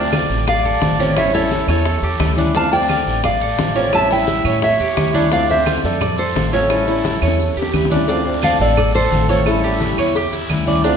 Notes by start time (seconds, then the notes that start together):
Already playing: D2 A3 C4 D4 F4 D5 G5
0.12 D3 A3 C4 F4, high bongo, high conga, short guiro, claves, maracas
0.29 A1, high bongo, high conga, short guiro, maracas
0.47 D5 F5, muted nylon-string guitar stroke, high bongo, high conga, low conga, long guiro, claves, maracas
0.65 A4, high conga, low conga
0.81 A1 D3 A3 C4 F4, high bongo, low bongo, high conga, short guiro, maracas
0.99 A3 C4 C#4 F4, high bongo, high conga, short guiro, maracas
1.16 E3 G3 C#4 E4 C#5 E5, high bongo, high conga, long guiro, claves, maracas
1.33 G3 C#4 E4 A4 C#5, high bongo, high conga, maracas
1.51 E3 G3 C#4 E4, high bongo, high conga, short guiro, maracas
1.68 E2 A4 C#5, high bongo, high conga, short guiro, claves, maracas
1.85 muted nylon-string guitar stroke, high bongo, high conga, maracas
2.02 E2 G4, high bongo, high conga, maracas
2.19 D2 E3 G3 C#4 E4, high bongo, low bongo, high conga, short guiro, claves, maracas
2.37 G3 C#4 D4 E4, high conga, short guiro, maracas
2.54 D3 A3 C4 D4 F4 F5 A5, high bongo, long guiro, maracas
2.71 A3 C4 F4 D5 G5, high bongo
2.89 D3 A3 C4 F4, high bongo, high conga, short guiro, claves, maracas
3.06 A1, high bongo, high conga, short guiro, maracas
3.23 D5 F5, muted nylon-string guitar stroke, high bongo, high conga, low conga, claves, maracas
3.41 A4, high conga
3.58 A1 D3 A3 C4 F4, high bongo, low bongo, high conga, short guiro, maracas
3.75 A3 C4 C#4 F4, high bongo, short guiro, maracas
3.93 E3 G3 C#4 E4 E5 A5, high bongo, claves, maracas
4.10 G3 C#4 E4 E5 G5, high bongo, high conga
4.27 E3 G3 C#4 E4, high bongo, high conga, short guiro, maracas
4.45 A2 C#5, high bongo, high conga, short guiro, claves, maracas
4.62 C#5 E5, muted nylon-string guitar stroke, high bongo, high conga, long guiro, maracas
4.80 E2 G4, high bongo, high conga, maracas
4.96 D2 E3 G3 C#4 E4, high bongo, low bongo, high conga, short guiro, claves, maracas
5.13 G3 C#4 D4 E4, high conga, short guiro, maracas
5.31 D3 A3 C4 D4 F4 D5 F5, high bongo, long guiro, maracas
5.48 A3 C4 F4 C5 E5, high bongo, high conga, maracas
5.66 D3 A3 C4 F4, high bongo, high conga, short guiro, claves, maracas
5.84 F2 A4 D5, high bongo, high conga, short guiro, maracas
6.01 D5, muted nylon-string guitar stroke, high bongo, high conga, low conga, long guiro, claves, maracas
6.18 A4 C5, high conga
6.35 A1 D3 A3 C4 F4, high bongo, low bongo, high conga, short guiro, maracas
6.53 A3 C4 C#4 F4 A4 C#5, high bongo, short guiro, maracas
6.70 E3 G3 C#4 E4, high bongo, high conga, long guiro, claves, maracas
6.87 G3 C#4 E4, high bongo, high conga, maracas
7.04 E3 G3 C#4 E4, high bongo, high conga, short guiro, maracas
7.22 E2 C#5, high conga, short guiro, claves, maracas
7.28 low bongo
7.39 muted nylon-string guitar stroke, high bongo, high conga, long guiro, maracas
7.56 E2 G4, high conga, maracas
7.62 low bongo
7.73 D2 E3 G3 C#4 E4, low bongo, high conga, short guiro, claves, maracas
7.85 low bongo
7.90 G3 C#4 D4 E4, high conga, short guiro, maracas
7.96 low bongo
8.08 D3 A3 C4 D4 F4, cowbell, high conga, long guiro, maracas
8.25 A3 C4 F4, high conga
8.42 D3 A3 C4 F4 A4 D5 F5, cowbell, high conga, short guiro, claves, maracas
8.59 A1 A4 D5, short guiro, maracas
8.77 D5, muted nylon-string guitar stroke, cowbell, high conga, low conga, long guiro, claves, maracas
8.95 A4 C5, high conga, maracas
9.11 A1 D3 A3 C4 F4, cowbell, high conga, short guiro, maracas
9.29 A3 C4 F4 A4 C#5, cowbell, high conga, short guiro, maracas
9.46 E3 G3 C#4 E4, cowbell, high conga, long guiro, claves, maracas
9.63 G3 C#4 E4 G4, high conga
9.80 E3 G3 C#4 E4, cowbell, high conga, short guiro, maracas
9.98 E2 C#5, cowbell, high conga, short guiro, claves, maracas
10.15 G4, muted nylon-string guitar stroke, cowbell, high conga, long guiro, maracas
10.32 E2 E4, high conga, maracas
10.49 D2 E3 G3 C#4 E4, cowbell, high conga, short guiro, claves, maracas
10.66 G3 C#4 E4 D5, high conga, short guiro, maracas
10.84 D3 A3 C4 D4 F4, cowbell, high conga, maracas